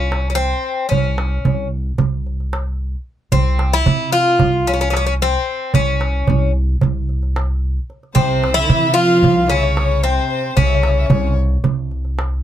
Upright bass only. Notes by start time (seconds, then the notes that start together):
Already playing: C2
0.91 C2
1.45 C2
1.99 C2
3.32 C2
3.87 C3
4.40 C2
5.75 C2
6.29 C2
6.83 C2
8.16 C2
8.69 C3
9.22 C2
10.57 C2
11.10 C2
11.64 C2